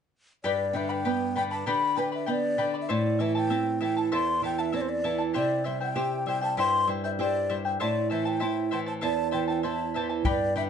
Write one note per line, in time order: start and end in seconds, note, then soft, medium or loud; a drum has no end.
0.44 1.63 G2 medium
0.44 0.75 G4 medium
0.44 0.73 B4 medium
0.44 0.78 D5 medium
0.44 0.74 D5 medium
0.44 0.73 G5 medium
0.44 0.75 B5 medium
0.73 1.04 D3 soft
0.73 0.89 B4 soft
0.73 0.88 D5 medium
0.73 0.93 E5 medium
0.73 0.90 G5 soft
0.73 0.88 B5 medium
0.89 1.04 B4 soft
0.89 1.04 D5 soft
0.89 1.37 G5 medium
0.89 1.05 B5 soft
1.05 1.35 B3 soft
1.05 1.35 B4 medium
1.05 1.35 D5 medium
1.05 1.34 G5 medium
1.05 1.36 B5 medium
1.36 1.66 D3 soft
1.36 1.51 B4 soft
1.36 1.51 D5 medium
1.36 1.51 G5 medium
1.36 1.43 G5 medium
1.36 1.50 B5 medium
1.51 1.66 B4 soft
1.51 1.66 D5 soft
1.51 1.69 A5 medium
1.51 1.67 B5 soft
1.66 2.57 D3 medium
1.66 1.97 G4 medium
1.66 1.95 B4 medium
1.66 1.95 D5 medium
1.66 1.94 G5 medium
1.66 2.00 B5 medium
1.66 1.96 B5 medium
1.96 2.12 B4 medium
1.96 2.27 B4 soft
1.96 2.11 D5 medium
1.96 2.12 G5 soft
1.96 2.13 G5 medium
1.96 2.11 B5 soft
2.12 2.26 B4 soft
2.12 2.26 D5 soft
2.12 2.32 E5 medium
2.12 2.27 B5 soft
2.26 2.58 B3 medium
2.26 2.57 B4 medium
2.26 2.57 D5 medium
2.26 2.57 G5 medium
2.26 2.58 B5 medium
2.30 2.75 D5 medium
2.58 2.88 D3 soft
2.58 2.74 B4 medium
2.58 2.73 D5 medium
2.58 2.74 G5 medium
2.58 2.73 B5 medium
2.74 2.89 B4 soft
2.74 2.90 D5 soft
2.74 2.89 B5 soft
2.81 2.92 E5 medium
2.89 4.09 A2 medium
2.89 3.19 E4 medium
2.89 3.19 A4 medium
2.89 3.20 C5 medium
2.89 3.22 D5 medium
2.89 3.18 E5 medium
2.89 3.19 A5 medium
3.19 3.50 E3 soft
3.19 3.35 E4 soft
3.19 3.34 A4 medium
3.19 3.35 E5 soft
3.19 3.36 E5 medium
3.19 3.34 A5 soft
3.35 3.49 E4 soft
3.35 3.50 A4 soft
3.35 3.79 G5 medium
3.35 3.50 A5 soft
3.50 3.80 C4 medium
3.50 3.80 E4 medium
3.50 3.80 A4 medium
3.50 3.79 E5 medium
3.50 3.81 A5 medium
3.81 4.11 E3 soft
3.81 3.97 E4 medium
3.81 3.96 A4 medium
3.81 3.96 E5 medium
3.81 4.00 G5 medium
3.81 3.95 A5 medium
3.97 4.11 E4 soft
3.97 4.11 A4 soft
3.97 4.11 A5 soft
3.97 4.13 A5 medium
4.12 5.32 E2 medium
4.12 4.42 E4 medium
4.12 4.43 A4 medium
4.12 4.43 C5 medium
4.12 4.42 E5 medium
4.12 4.43 A5 medium
4.12 4.42 C6 medium
4.42 4.72 E3 soft
4.42 4.58 E4 soft
4.42 4.58 A4 soft
4.42 4.58 E5 soft
4.42 4.62 G5 medium
4.42 4.57 A5 medium
4.58 4.72 E4 soft
4.58 4.72 A4 soft
4.58 4.74 E5 medium
4.58 4.73 A5 soft
4.72 5.03 C4 soft
4.72 5.03 E4 medium
4.72 5.04 A4 medium
4.72 4.83 D5 medium
4.72 5.03 E5 medium
4.72 5.04 A5 medium
4.81 4.91 C5 medium
4.89 5.20 D5 medium
5.04 5.34 E3 soft
5.04 5.19 E4 medium
5.04 5.19 A4 medium
5.04 5.19 E5 soft
5.04 5.17 A5 medium
5.19 5.33 E4 soft
5.19 5.34 A4 soft
5.19 5.34 A5 soft
5.34 6.54 C3 medium
5.34 5.63 E4 medium
5.34 5.65 G4 medium
5.34 5.64 C5 medium
5.34 5.67 D5 medium
5.34 5.63 E5 medium
5.34 5.64 G5 medium
5.64 5.96 G3 soft
5.64 5.80 E4 soft
5.64 5.80 C5 soft
5.64 5.80 E5 soft
5.64 5.81 E5 medium
5.64 5.79 G5 soft
5.80 5.95 E4 soft
5.80 5.95 C5 soft
5.80 5.95 G5 soft
5.80 6.25 G5 medium
5.95 6.26 E4 soft
5.95 6.26 G4 medium
5.95 6.27 C5 medium
5.95 6.25 E5 medium
5.95 6.27 G5 medium
6.26 6.56 G3 soft
6.26 6.41 E4 soft
6.26 6.41 C5 medium
6.26 6.42 E5 medium
6.26 6.42 G5 medium
6.26 6.40 G5 medium
6.41 6.57 E4 soft
6.41 6.58 C5 soft
6.41 6.57 G5 soft
6.41 6.57 A5 medium
6.57 7.76 G2 medium
6.57 6.87 E4 medium
6.57 6.88 G4 medium
6.57 6.88 C5 medium
6.57 6.87 E5 medium
6.57 6.88 G5 medium
6.57 6.87 C6 medium
6.87 7.18 G3 soft
6.87 7.04 E4 soft
6.87 7.03 C5 medium
6.87 7.03 E5 medium
6.87 7.03 G5 medium
7.04 7.19 E4 soft
7.04 7.19 C5 soft
7.04 7.11 E5 medium
7.04 7.19 G5 soft
7.19 7.49 E4 medium
7.19 7.49 G4 soft
7.19 7.49 C5 medium
7.19 7.55 D5 medium
7.19 7.48 E5 medium
7.19 7.49 G5 medium
7.49 7.79 G3 soft
7.49 7.65 E4 medium
7.49 7.65 C5 medium
7.49 7.65 E5 medium
7.49 7.64 G5 medium
7.65 7.79 E4 soft
7.65 7.79 C5 soft
7.65 7.80 G5 soft
7.80 9.00 A2 medium
7.80 8.09 E4 medium
7.80 8.09 A4 medium
7.80 8.09 C5 medium
7.80 8.09 D5 medium
7.80 8.09 E5 medium
7.80 8.09 A5 medium
8.10 8.41 E3 soft
8.10 8.26 E4 soft
8.10 8.25 C5 medium
8.10 8.26 E5 soft
8.10 8.29 E5 medium
8.10 8.24 A5 medium
8.25 8.39 E4 soft
8.25 8.39 C5 soft
8.25 8.73 G5 medium
8.25 8.40 A5 soft
8.40 8.70 E4 medium
8.40 8.72 E4 soft
8.40 8.71 C5 medium
8.40 8.70 E5 medium
8.40 8.71 A5 medium
8.71 9.02 E3 soft
8.71 8.86 E4 medium
8.71 8.85 C5 medium
8.71 8.87 E5 medium
8.71 8.80 G5 medium
8.71 8.85 A5 medium
8.86 9.01 E4 soft
8.86 9.01 C5 soft
8.86 9.01 A5 soft
8.86 8.93 A5 medium
9.01 10.22 E2 medium
9.01 9.31 E4 medium
9.01 9.31 A4 medium
9.01 9.31 C5 medium
9.01 9.30 E5 medium
9.01 9.31 A5 medium
9.01 9.32 A5 medium
9.31 9.64 E3 soft
9.31 9.48 E4 soft
9.31 9.47 C5 medium
9.31 9.48 E5 soft
9.31 9.47 G5 medium
9.31 9.46 A5 medium
9.48 9.62 E4 soft
9.48 9.62 C5 soft
9.48 9.63 G5 medium
9.48 9.63 A5 soft
9.63 9.94 E4 medium
9.63 9.94 E4 soft
9.63 9.94 C5 medium
9.63 9.93 E5 soft
9.63 10.06 A5 medium
9.63 9.95 A5 medium
9.94 10.25 E3 soft
9.94 10.09 E4 medium
9.94 10.09 C5 medium
9.94 10.10 E5 medium
9.94 10.08 A5 medium
10.09 10.25 E4 soft
10.09 10.25 C5 soft
10.09 10.25 A5 soft
10.25 10.70 G2 medium
10.25 10.56 G4 medium
10.25 10.55 B4 medium
10.25 10.55 D5 medium
10.25 10.54 D5 medium
10.25 10.54 G5 medium
10.25 10.55 B5 medium
10.25 bombo low medium
10.56 10.70 D3 soft
10.56 10.70 B4 soft
10.56 10.70 D5 medium
10.56 10.63 E5 medium
10.56 10.70 G5 soft
10.56 10.70 B5 medium